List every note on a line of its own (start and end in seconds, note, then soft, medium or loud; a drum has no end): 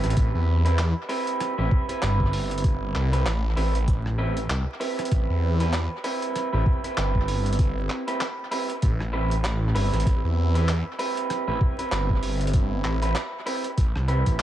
0.00 0.15 A1 loud
0.00 0.61 C4 medium
0.00 0.61 E4 medium
0.00 0.61 G4 medium
0.00 0.61 B4 medium
0.00 cross-stick soft
0.00 closed hi-hat medium
0.10 closed hi-hat medium
0.17 0.32 A1 loud
0.17 kick loud
0.17 closed hi-hat medium
0.35 0.94 E2 loud
0.65 0.80 C4 medium
0.65 0.80 E4 loud
0.65 0.80 G4 medium
0.65 0.80 B4 loud
0.65 closed hi-hat medium
0.79 clap loud
0.79 closed hi-hat medium
1.09 1.54 C4 medium
1.09 1.54 E4 medium
1.09 1.54 G4 medium
1.09 1.54 B4 loud
1.09 open hi-hat medium
1.27 closed hi-hat medium
1.40 cross-stick soft
1.40 closed hi-hat medium
1.58 1.69 A1 medium
1.58 1.85 C4 medium
1.58 1.85 E4 medium
1.58 1.85 G4 medium
1.58 1.85 B4 medium
1.71 kick loud
1.89 3.09 C4 medium
1.89 3.09 E4 loud
1.89 3.09 G4 medium
1.89 3.09 B4 loud
1.89 closed hi-hat medium
2.02 2.93 G1 loud
2.02 clap loud
2.02 closed hi-hat medium
2.20 kick medium
2.33 open hi-hat medium
2.51 closed hi-hat medium
2.58 closed hi-hat medium
2.64 kick loud
2.64 closed hi-hat medium
2.95 3.24 C2 loud
2.95 clap medium
3.12 3.28 C4 medium
3.12 3.28 E4 medium
3.12 3.28 G4 medium
3.12 3.28 B4 medium
3.12 closed hi-hat medium
3.26 3.55 A1 loud
3.26 clap loud
3.26 closed hi-hat medium
3.56 4.48 A1 loud
3.56 3.76 C4 medium
3.56 3.76 E4 medium
3.56 3.76 G4 medium
3.56 3.76 B4 medium
3.56 open hi-hat medium
3.75 closed hi-hat medium
3.88 kick loud
3.88 closed hi-hat medium
4.06 cross-stick soft
4.18 4.38 C4 medium
4.18 4.38 E4 medium
4.18 4.38 G4 medium
4.18 4.38 B4 loud
4.37 closed hi-hat medium
4.49 4.65 C2 loud
4.49 clap loud
4.49 closed hi-hat medium
4.80 5.56 C4 medium
4.80 5.56 E4 medium
4.80 5.56 G4 medium
4.80 5.56 B4 medium
4.80 open hi-hat medium
4.99 cross-stick soft
4.99 closed hi-hat soft
5.05 closed hi-hat medium
5.11 5.27 A1 loud
5.11 kick loud
5.11 closed hi-hat medium
5.29 5.88 E2 loud
5.60 5.75 C4 medium
5.60 5.75 E4 medium
5.60 5.75 G4 medium
5.60 5.75 B4 loud
5.60 closed hi-hat medium
5.73 clap loud
5.73 closed hi-hat medium
6.04 6.49 C4 medium
6.04 6.49 E4 medium
6.04 6.49 G4 medium
6.04 6.49 B4 loud
6.04 open hi-hat medium
6.22 closed hi-hat medium
6.36 cross-stick soft
6.36 closed hi-hat medium
6.53 6.64 A1 medium
6.53 6.80 C4 medium
6.53 6.80 E4 medium
6.53 6.80 G4 medium
6.53 6.80 B4 medium
6.66 kick loud
6.84 8.04 C4 medium
6.84 8.04 E4 medium
6.84 8.04 G4 medium
6.84 8.04 B4 loud
6.84 closed hi-hat soft
6.97 7.88 G1 loud
6.97 clap loud
6.97 closed hi-hat medium
7.15 kick medium
7.28 open hi-hat medium
7.46 closed hi-hat soft
7.53 closed hi-hat medium
7.59 kick loud
7.59 closed hi-hat medium
7.90 clap medium
8.07 8.23 C4 medium
8.07 8.23 E4 medium
8.07 8.23 G4 medium
8.07 8.23 B4 medium
8.07 closed hi-hat medium
8.21 clap loud
8.21 closed hi-hat medium
8.51 8.71 C4 medium
8.51 8.71 E4 medium
8.51 8.71 G4 medium
8.51 8.71 B4 medium
8.51 open hi-hat medium
8.70 closed hi-hat medium
8.82 9.73 A1 loud
8.82 kick loud
8.82 closed hi-hat medium
9.00 cross-stick soft
9.13 9.33 C4 loud
9.13 9.33 E4 medium
9.13 9.33 G4 medium
9.13 9.33 B4 loud
9.31 closed hi-hat medium
9.44 clap loud
9.44 closed hi-hat medium
9.75 9.91 G1 loud
9.75 10.51 C4 medium
9.75 10.51 E4 medium
9.75 10.51 G4 medium
9.75 10.51 B4 medium
9.75 open hi-hat medium
9.93 10.04 A1 loud
9.93 cross-stick soft
9.93 closed hi-hat soft
10.00 closed hi-hat medium
10.06 10.21 A1 loud
10.06 kick loud
10.06 closed hi-hat medium
10.24 10.83 E2 loud
10.55 10.70 C4 medium
10.55 10.70 E4 medium
10.55 10.70 G4 medium
10.55 10.70 B4 loud
10.55 closed hi-hat medium
10.68 clap loud
10.68 closed hi-hat medium
10.99 11.44 C4 medium
10.99 11.44 E4 medium
10.99 11.44 G4 medium
10.99 11.44 B4 loud
10.99 open hi-hat medium
11.17 closed hi-hat medium
11.30 cross-stick soft
11.30 closed hi-hat medium
11.48 11.59 A1 loud
11.48 11.75 C4 medium
11.48 11.75 E4 medium
11.48 11.75 G4 medium
11.48 11.75 B4 medium
11.61 kick loud
11.79 12.98 C4 medium
11.79 12.98 E4 medium
11.79 12.98 G4 medium
11.79 12.98 B4 loud
11.79 closed hi-hat medium
11.92 12.83 G1 loud
11.92 clap loud
11.92 closed hi-hat medium
12.10 kick medium
12.23 open hi-hat medium
12.41 closed hi-hat medium
12.47 closed hi-hat medium
12.53 kick loud
12.53 closed hi-hat medium
12.84 13.14 A1 loud
12.84 clap medium
13.02 13.17 C4 medium
13.02 13.17 E4 medium
13.02 13.17 G4 medium
13.02 13.17 B4 medium
13.02 closed hi-hat medium
13.15 clap loud
13.15 closed hi-hat medium
13.46 13.66 C4 medium
13.46 13.66 E4 medium
13.46 13.66 G4 medium
13.46 13.66 B4 medium
13.46 open hi-hat medium
13.64 closed hi-hat medium
13.78 13.93 A1 loud
13.78 kick loud
13.78 closed hi-hat medium
13.95 14.24 C2 loud
13.95 cross-stick soft
14.08 14.36 C4 medium
14.08 14.36 E4 medium
14.08 14.36 G4 medium
14.08 14.36 B4 medium
14.08 closed hi-hat soft
14.26 14.42 A1 loud
14.26 kick medium
14.26 closed hi-hat medium